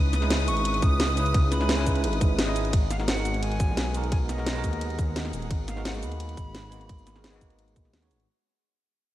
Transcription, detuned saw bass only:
Already playing: C#2
0.48 G#1
0.82 C#2
2.04 G#1
2.21 G#1
2.73 G#1
3.69 B1
4.64 D#2
5.33 D#1
5.51 G#1
6.03 D#2
6.37 G#1
7.76 A#1
7.93 D#2
8.11 G#1

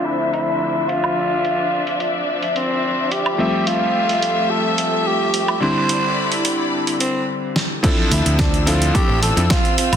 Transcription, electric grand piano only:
Already playing: D3 F3 A3 C4 E5
3.38 F3 G3 A3 C4 E5
5.60 D3 G3 C4 D4 E4
7.83 F3 C4 D4 E4 A4
8.66 F3 C4 D4 E4 A4
9.37 F3 C4 D4 E4 A4

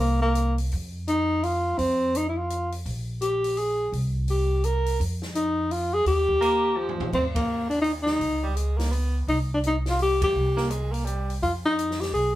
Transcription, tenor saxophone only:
0.00 A#3
0.22 A#3
1.08 D#4
1.44 F4
1.78 C4
2.17 D#4
2.29 E4
2.38 F4
3.21 G4
3.58 G#4
4.30 G4
4.65 A#4
5.35 D#4
5.72 F4
5.94 G#4
6.07 G4
7.14 C4
7.35 A#3
7.70 D4
7.81 D#4
8.02 D#4
9.29 D#4
9.54 D4
9.66 D#4
9.89 F4
10.02 G4
10.23 G4
11.43 F4
11.65 D#4
12.00 G4
12.13 G#4

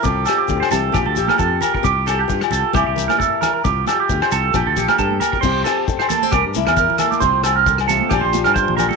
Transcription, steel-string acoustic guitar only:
0.03 C3 C4 F4 A4, muted steel-string acoustic guitar stroke
0.28 G4
0.49 D3
0.71 C3
0.92 A#2 F4
1.17 G4
1.39 F3 F4
1.83 C3 F4
2.06 G4
2.28 F3 F4
2.73 C3 E4
2.96 A#4
3.17 G3 E4
3.64 C3 F4
3.88 G4
4.11 F3 F4
4.55 A#2 F4
4.77 G4
5.43 C3 F3 C4 F4 G4
5.66 muted steel-string acoustic guitar stroke
5.88 F3 A4
6.10 A#3
6.23 C4
6.34 C3 A#4
6.56 E4
6.78 G3 A#4
7.01 A#3
7.20 C3 F3 C4 F4, muted steel-string acoustic guitar stroke
7.46 F4
7.66 D3
7.89 C3
8.11 A#2 F3 D4 F4 G4
8.34 F4
8.55 F3 G4
8.78 D4

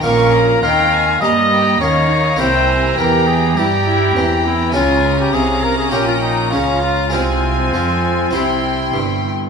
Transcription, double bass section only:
0.05 A#1
0.64 D#2
1.23 G2
1.81 D#2
2.40 C2
2.98 E2
3.58 G2
4.16 E2
4.76 C#2
5.34 C2
5.94 A#1
6.53 C#2
7.13 C2
7.74 F2
8.34 C2
8.94 G1

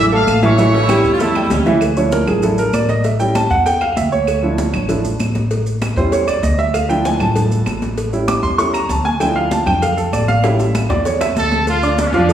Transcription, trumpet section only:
0.14 F5
0.45 C#5 C#6
11.37 A4 A5
11.68 F4 F5
12.00 D4 D5
12.06 C#4
12.13 D4 D5

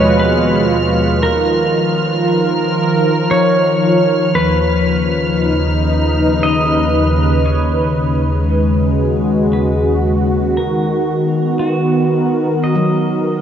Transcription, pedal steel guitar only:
Already playing: C#5
0.19 B4
1.23 A#4
3.31 C#5
4.35 B4
6.43 D#5
7.46 C#5
9.53 B4
10.57 A#4
11.59 F#4
12.64 D#5

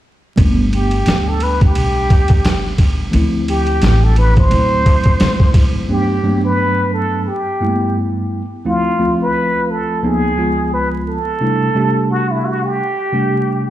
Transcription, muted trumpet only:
0.74 G4
1.28 A4
1.43 B4
1.63 G4
3.49 G4
4.04 A4
4.18 B4
4.38 C5
5.91 G4
6.45 B4
6.93 A4
7.27 G4
8.68 F4
9.22 B4
9.71 A4
10.06 G#4
10.73 B4
11.08 A4
12.10 F#4
12.31 E4
12.45 F#4
12.65 G4

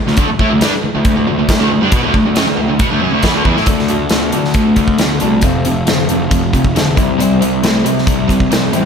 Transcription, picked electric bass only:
0.07 D2
0.18 D2
0.29 muted picked electric bass stroke
0.40 A2
0.50 D2
0.62 G2
0.73 muted picked electric bass stroke
0.84 muted picked electric bass stroke
0.95 D2
1.05 D2
1.18 D2
1.29 D2
1.38 D2
1.49 D2
1.61 D2
1.71 D2
1.82 G2
1.92 B2
2.04 D2
2.14 D2
2.26 D2
2.36 F#2
2.47 D2
2.58 D2
2.70 D2
2.80 B2
2.91 D2
3.02 F#2
3.12 D2
3.23 E2
3.35 D2
3.45 E2
3.56 A2
3.67 D2
4.11 D2
4.33 D2
4.54 D2
5.00 D2
5.22 C2
5.43 F1
5.88 F1
6.10 F1
6.31 F1
6.75 F1
6.97 C2
7.20 C2
7.64 C2
7.86 C2
8.07 C2
8.51 C2
8.73 A1

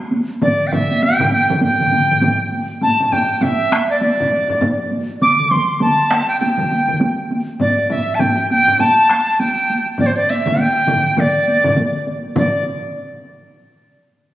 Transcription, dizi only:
0.42 D5
0.67 G5
0.73 E5
1.03 G5
1.33 G5
1.63 G5
2.82 A5
3.07 A5
3.12 G5
3.38 G5
3.42 E5
3.90 D5
4.01 D5
5.22 D6
5.51 C6
5.81 A5
6.28 G5
6.40 G5
7.60 D5
7.90 E5
8.15 A5
8.19 G5
8.50 G5
8.80 A5
9.33 A5
9.40 G5
9.99 D5
10.06 C5
10.16 D5
10.30 E5
10.60 G5
11.20 D5
12.37 D5

